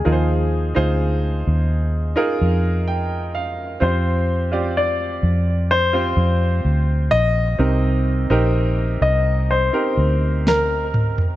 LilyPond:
<<
  \new Staff \with { instrumentName = "Grand piano" } { \time 4/4 \key c \minor \tempo 4 = 64 aes'2~ aes'8. r4 r16 | c''4 d''4 c''4. ees''8~ | ees''4. ees''8 c''4 bes'8. r16 | }
  \new Staff \with { instrumentName = "Upright piano" } { \time 4/4 \key c \minor << { f4. r4. g''8 f''8 | r1 | c4. r2 r8 | } \\ { <ees' f' aes' bes' c''>8. <ees' f' aes' c''>4. <ees' f' aes' bes'>4.~ <ees' f' aes' bes'>16 | <c' f' g' c''>8. <c' f' g' d''>4. <c' f' g' c''>4.~ <c' f' g' c''>16 | <c' ees' g' bes'>8. <c' ees' g' bes'>4. <c' ees' g' bes'>4.~ <c' ees' g' bes'>16 | } >> }
  \new Staff \with { instrumentName = "Fingered electric bass" } { \clef bass \time 4/4 \key c \minor ees,8. d,8. ees,8. r16 f,4. | f,4. f,4 f,8 d,8 bes,,8 | c,8. bes,,8. c,8. r16 d,4. | }
  \new DrumStaff \with { instrumentName = "Drums" } \drummode { \time 4/4 r4 r4 r4 r4 | r4 r4 r4 r4 | r4 r4 r4 sn8 toml16 tomfh16 | }
>>